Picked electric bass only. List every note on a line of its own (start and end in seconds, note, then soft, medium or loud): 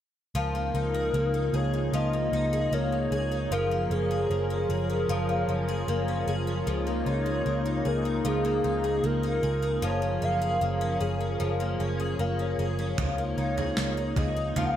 0.35 0.70 C#2 medium
0.74 1.09 C#2 medium
1.14 1.49 C#2 medium
1.53 1.88 C#2 medium
1.93 2.28 C#2 medium
2.32 2.67 C#2 medium
2.72 3.07 C#2 medium
3.11 3.46 C#2 medium
3.51 3.86 F#1 medium
3.90 4.25 F#1 medium
4.30 4.65 F#1 medium
4.69 5.04 F#1 loud
5.09 5.44 F#1 loud
5.48 5.83 F#1 medium
5.88 6.23 F#1 medium
6.27 6.62 F#1 medium
6.67 7.02 C#2 loud
7.06 7.41 C#2 medium
7.46 7.81 C#2 medium
7.86 8.20 C#2 medium
8.25 8.59 C#2 medium
8.64 8.99 C#2 medium
9.04 9.38 C#2 medium
9.43 9.78 C#2 medium
9.82 10.17 F#1 medium
10.22 10.57 F#1 medium
10.61 10.96 F#1 medium
11.01 11.36 F#1 medium
11.40 11.75 F#1 loud
11.79 12.14 F#1 medium
12.19 12.54 F#1 medium
12.58 12.93 F#1 medium
12.98 13.33 C#2 medium
13.37 13.72 C#2 medium
13.77 14.12 C#2 medium
14.16 14.51 C#2 medium
14.56 14.76 C#2 medium